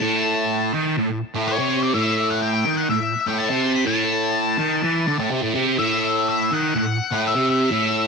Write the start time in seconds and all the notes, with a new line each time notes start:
Already playing: A5
0.02 A2
0.74 D#3
0.98 A2
1.35 A2
1.48 C#5
1.59 C3
1.83 D5
1.94 A2 E5
2.30 F#5
2.42 G5
2.66 D#3
2.77 F#5
2.90 A2 E5
3.27 A2 G5
3.38 A5
3.50 C3
3.75 B5
3.86 A2 A5
4.59 D#3
4.83 E3
5.08 D3
5.19 A2
5.31 C3
5.42 A2
5.55 C3
5.78 A2 E5
6.04 E5
6.29 E5
6.52 D#3 F#5
6.75 A2 F#5
7.11 A2
7.27 E5
7.35 C3
7.50 E5
7.71 A2